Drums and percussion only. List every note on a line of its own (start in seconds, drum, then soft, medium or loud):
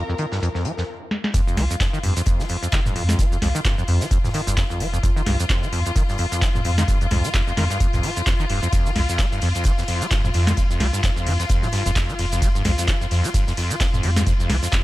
0.09 cabasa soft
0.18 closed hi-hat medium
0.32 snare medium
0.32 cabasa medium
0.43 closed hi-hat medium
0.43 cabasa medium
0.55 snare soft
0.55 cabasa soft
0.65 closed hi-hat medium
0.78 snare soft
0.78 cabasa medium
1.11 snare medium
1.24 snare medium
1.34 kick loud
1.34 closed hi-hat loud
1.34 closed hi-hat medium
1.34 cabasa medium
1.48 cabasa soft
1.57 snare medium
1.57 closed hi-hat medium
1.57 open hi-hat loud
1.70 closed hi-hat soft
1.70 cabasa medium
1.80 kick loud
1.80 snare loud
1.80 clap loud
1.80 closed hi-hat medium
1.80 cabasa medium
1.94 cabasa soft
2.03 closed hi-hat medium
2.03 open hi-hat loud
2.16 closed hi-hat medium
2.16 cabasa medium
2.26 kick loud
2.26 closed hi-hat medium
2.26 cabasa medium
2.40 snare medium
2.40 cabasa soft
2.49 closed hi-hat medium
2.49 open hi-hat loud
2.63 closed hi-hat medium
2.63 cabasa medium
2.72 kick loud
2.72 snare loud
2.72 clap loud
2.72 closed hi-hat medium
2.72 cabasa medium
2.86 mid tom medium
2.86 cabasa soft
2.96 closed hi-hat medium
2.96 open hi-hat loud
3.09 snare medium
3.09 closed hi-hat soft
3.09 cabasa medium
3.19 kick loud
3.19 closed hi-hat medium
3.19 cabasa medium
3.32 cabasa soft
3.42 snare medium
3.42 closed hi-hat medium
3.42 open hi-hat loud
3.55 closed hi-hat soft
3.55 cabasa medium
3.65 kick loud
3.65 snare loud
3.65 clap loud
3.65 closed hi-hat medium
3.65 cabasa medium
3.79 cabasa soft
3.88 closed hi-hat medium
3.88 open hi-hat loud
4.01 snare medium
4.01 closed hi-hat medium
4.01 cabasa medium
4.11 kick loud
4.11 closed hi-hat medium
4.11 cabasa medium
4.24 snare soft
4.24 mid tom loud
4.24 cabasa soft
4.34 snare medium
4.34 closed hi-hat medium
4.34 open hi-hat loud
4.47 closed hi-hat medium
4.47 cabasa medium
4.57 kick loud
4.57 snare loud
4.57 clap loud
4.57 closed hi-hat medium
4.57 cabasa medium
4.69 closed hi-hat soft
4.69 cabasa soft
4.80 closed hi-hat medium
4.80 open hi-hat loud
4.93 closed hi-hat soft
4.93 cabasa medium
5.03 kick loud
5.03 closed hi-hat medium
5.03 cabasa medium
5.17 cabasa soft
5.26 snare medium
5.26 closed hi-hat medium
5.26 open hi-hat loud
5.39 closed hi-hat soft
5.39 cabasa medium
5.49 kick loud
5.49 snare loud
5.49 clap loud
5.49 closed hi-hat medium
5.49 cabasa medium
5.63 cabasa soft
5.72 closed hi-hat medium
5.72 open hi-hat loud
5.86 closed hi-hat medium
5.86 cabasa medium
5.96 kick loud
5.96 closed hi-hat medium
5.96 cabasa medium
6.09 snare medium
6.09 cabasa soft
6.18 closed hi-hat medium
6.18 open hi-hat loud
6.32 closed hi-hat medium
6.32 cabasa medium
6.42 kick loud
6.42 snare loud
6.42 clap loud
6.42 closed hi-hat medium
6.42 cabasa medium
6.55 mid tom loud
6.55 cabasa soft
6.65 closed hi-hat medium
6.65 open hi-hat loud
6.78 snare medium
6.78 closed hi-hat soft
6.78 cabasa medium
6.88 kick loud
6.88 closed hi-hat medium
6.88 cabasa medium
7.01 closed hi-hat soft
7.01 cabasa soft
7.11 snare medium
7.11 closed hi-hat medium
7.11 mid tom medium
7.11 open hi-hat loud
7.24 closed hi-hat soft
7.24 cabasa medium
7.34 kick loud
7.34 snare loud
7.34 clap loud
7.34 closed hi-hat medium
7.34 cabasa medium
7.48 cabasa soft
7.57 snare medium
7.57 closed hi-hat medium
7.57 open hi-hat loud
7.70 snare medium
7.70 closed hi-hat medium
7.70 cabasa medium
7.80 kick loud
7.80 closed hi-hat medium
7.80 cabasa medium
7.93 snare soft
7.93 closed hi-hat soft
7.93 mid tom medium
7.93 cabasa soft
8.03 snare soft
8.03 closed hi-hat medium
8.03 open hi-hat loud
8.16 closed hi-hat medium
8.16 cabasa medium
8.26 kick loud
8.26 snare loud
8.26 clap loud
8.26 closed hi-hat medium
8.26 cabasa medium
8.39 closed hi-hat soft
8.39 cabasa soft
8.49 closed hi-hat medium
8.49 open hi-hat loud
8.63 closed hi-hat soft
8.63 cabasa medium
8.72 kick loud
8.72 closed hi-hat loud
8.72 closed hi-hat medium
8.72 ride medium
8.72 cabasa medium
8.86 cabasa soft
8.95 snare medium
8.95 closed hi-hat medium
8.95 open hi-hat loud
8.95 ride medium
9.09 closed hi-hat soft
9.09 cabasa medium
9.19 kick loud
9.19 snare loud
9.19 clap loud
9.19 closed hi-hat medium
9.19 ride medium
9.19 cabasa medium
9.32 cabasa soft
9.41 closed hi-hat medium
9.41 open hi-hat loud
9.41 ride medium
9.55 closed hi-hat medium
9.55 cabasa medium
9.64 kick loud
9.64 closed hi-hat medium
9.64 ride medium
9.64 cabasa medium
9.78 snare medium
9.78 cabasa soft
9.88 closed hi-hat medium
9.88 open hi-hat loud
9.88 ride medium
10.01 closed hi-hat medium
10.01 cabasa medium
10.11 kick loud
10.11 snare loud
10.11 clap loud
10.11 closed hi-hat loud
10.11 closed hi-hat medium
10.11 ride medium
10.11 cabasa medium
10.24 mid tom medium
10.24 cabasa soft
10.34 closed hi-hat medium
10.34 open hi-hat loud
10.34 ride medium
10.47 snare medium
10.47 closed hi-hat soft
10.47 cabasa medium
10.57 kick loud
10.57 closed hi-hat loud
10.57 closed hi-hat medium
10.57 ride medium
10.57 cabasa medium
10.71 cabasa soft
10.80 snare medium
10.80 closed hi-hat medium
10.80 open hi-hat loud
10.80 ride medium
10.93 closed hi-hat soft
10.93 cabasa medium
11.03 kick loud
11.03 snare loud
11.03 clap loud
11.03 closed hi-hat medium
11.03 ride medium
11.03 cabasa medium
11.17 cabasa soft
11.27 closed hi-hat medium
11.27 open hi-hat loud
11.27 ride medium
11.40 snare medium
11.40 closed hi-hat medium
11.40 cabasa medium
11.49 kick loud
11.49 closed hi-hat medium
11.49 ride medium
11.49 cabasa medium
11.62 snare soft
11.62 mid tom medium
11.62 cabasa soft
11.72 snare medium
11.72 closed hi-hat medium
11.72 open hi-hat loud
11.72 ride medium
11.86 closed hi-hat medium
11.86 cabasa medium
11.96 kick loud
11.96 snare loud
11.96 clap loud
11.96 closed hi-hat medium
11.96 ride medium
11.96 cabasa medium
12.09 closed hi-hat soft
12.09 cabasa soft
12.19 closed hi-hat medium
12.19 open hi-hat loud
12.19 ride medium
12.32 closed hi-hat soft
12.32 cabasa medium
12.42 kick loud
12.42 closed hi-hat medium
12.42 closed hi-hat loud
12.42 ride medium
12.42 cabasa medium
12.56 cabasa soft
12.65 snare medium
12.65 closed hi-hat medium
12.65 open hi-hat loud
12.65 ride medium
12.78 closed hi-hat soft
12.78 cabasa medium
12.87 kick loud
12.87 snare loud
12.87 clap loud
12.87 closed hi-hat medium
12.87 closed hi-hat loud
12.87 ride medium
12.87 cabasa medium
13.02 cabasa soft
13.11 closed hi-hat medium
13.11 open hi-hat loud
13.11 ride medium
13.24 closed hi-hat medium
13.24 cabasa medium
13.34 kick loud
13.34 closed hi-hat medium
13.34 ride medium
13.34 cabasa medium
13.47 snare medium
13.47 cabasa soft
13.57 closed hi-hat medium
13.57 open hi-hat loud
13.57 ride medium
13.70 closed hi-hat medium
13.70 cabasa medium
13.80 kick loud
13.80 snare loud
13.80 clap loud
13.80 closed hi-hat medium
13.80 ride medium
13.80 cabasa medium
13.93 mid tom medium
13.93 cabasa soft
14.03 closed hi-hat medium
14.03 open hi-hat loud
14.03 ride medium
14.16 snare medium
14.16 cabasa medium
14.26 kick loud
14.26 closed hi-hat medium
14.26 ride medium
14.26 cabasa medium
14.40 cabasa soft
14.50 snare medium
14.50 closed hi-hat medium
14.50 open hi-hat loud
14.50 ride medium
14.62 closed hi-hat soft
14.62 cabasa medium
14.72 kick loud
14.72 snare loud
14.72 clap loud
14.72 closed hi-hat medium
14.72 ride medium
14.72 cabasa medium